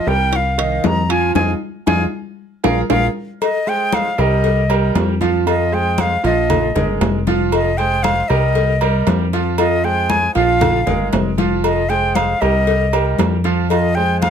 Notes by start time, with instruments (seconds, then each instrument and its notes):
0.06 analog synth bass C2, grand piano G3 G4 A#4, flute G5, high conga
0.32 flute F5, high bongo, high conga, high timbale
0.58 grand piano D#3 D#4 D#5, high conga, high timbale
0.84 analog synth bass F2, flute A#5, high bongo, low bongo, high conga, low timbale
1.09 grand piano F3 F4 F5, flute G#5, high timbale
1.35 analog synth bass F2, grand piano D#4 F4 G#4, flute G#5, high bongo, high conga, high timbale
1.86 analog synth bass F2, grand piano D#4 F4 G#4, flute G#5, high bongo, high conga, high timbale
2.64 analog synth bass A#1, grand piano F4 G#4 A#4, flute F5, high bongo, high conga, high timbale
2.90 analog synth bass A#1, grand piano F4 G#4 A#4, flute F5, high bongo, high conga, high timbale
3.41 flute D#5, cowbell, high conga, low agogo
3.66 grand piano G#3 G#4 C5, flute G5, cowbell, high conga
3.92 flute F5, cowbell, high conga, low timbale, low agogo
4.18 analog synth bass C2, grand piano G3 G4 A#4, flute D#5, high conga, low agogo
4.44 cowbell, high conga
4.69 grand piano G3 G4 A#4, high conga, low agogo
4.95 analog synth bass F2, cowbell, high conga, low timbale, low agogo
5.21 grand piano F3 F4 F5, cowbell, high conga
5.46 grand piano F3 F4 F5, flute D#5, cowbell, high conga, low agogo
5.72 grand piano G#3 G#4 C5, flute G5, high conga
5.98 flute F5, cowbell, high conga, low timbale, low agogo
6.23 analog synth bass A#1, grand piano F3 F4 F5, flute D#5, cowbell, high conga
6.50 cowbell, high conga, low conga, low agogo
6.75 analog synth bass G1, grand piano G#3 G#4 A#4, cowbell, high conga, low conga
7.01 analog synth bass F1, cowbell, high conga, low timbale, low agogo
7.27 grand piano F3 F4 F5, cowbell, high conga
7.52 flute D#5, cowbell, high conga, low agogo
7.77 grand piano G#3 G#4 C5, flute G5, cowbell, high conga
8.03 flute F5, cowbell, high conga, low timbale, low agogo
8.28 analog synth bass C2, grand piano G3 G4 A#4, flute D#5, high conga, low agogo
8.55 cowbell, high conga
8.81 grand piano G3 G4 A#4, high conga, low agogo
9.07 analog synth bass F2, cowbell, high conga, low timbale, low agogo
9.33 grand piano F3 F4 F5, cowbell
9.58 grand piano F3 F4 F5, flute D#5, cowbell, high conga, low agogo
9.84 grand piano G#3 G#4 C5, flute G5, high conga
10.10 flute G#5, cowbell, high conga, low timbale, low agogo
10.35 analog synth bass A#1, grand piano F3 F4 F5, flute F5, cowbell, high conga
10.61 cowbell, high conga, low conga, low agogo
10.86 analog synth bass G1, grand piano G#3 G#4 A#4, cowbell, high conga, low conga
11.13 analog synth bass F1, cowbell, high conga, low timbale, low agogo
11.38 grand piano F3 F4 F5, cowbell, high conga
11.64 flute D#5, cowbell, high conga, low agogo
11.89 grand piano G#3 G#4 C5, flute G5, cowbell, high conga
12.15 flute F5, cowbell, high conga, low timbale, low agogo
12.41 analog synth bass C2, grand piano G3 G4 A#4, flute D#5, high conga, low agogo
12.67 cowbell, high conga
12.93 grand piano G3 G4 A#4, high conga, low agogo
13.19 analog synth bass F2, cowbell, high conga, low timbale, low agogo
13.44 grand piano F3 F4 F5, cowbell
13.70 grand piano F3 F4 F5, flute D#5, cowbell, high conga, low agogo
13.95 grand piano G#3 G#4 C5, flute G5, high conga
14.21 flute F5, cowbell, high conga, low timbale, low agogo